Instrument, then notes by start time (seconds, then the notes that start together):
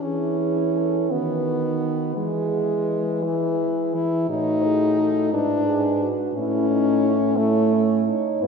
french horn
0.02 E3 C#4 E4 G#4
0.41 G#4
0.76 A4
1.11 D#3 B3 F#4 B4
2.16 E3 G#3 G#4 B4
3.23 E3
3.94 E4
4.29 A2 D#4 F#4 C#5
4.64 G#4
4.99 A4
5.32 G#2 D4 E4 B4
5.66 G#4
6.02 F#4
6.34 A2 C#4 E4
6.70 D#4
7.05 E4
7.38 A3 E4 C#5
7.73 C#4
8.07 D#4
8.41 G2 B3 E4 B4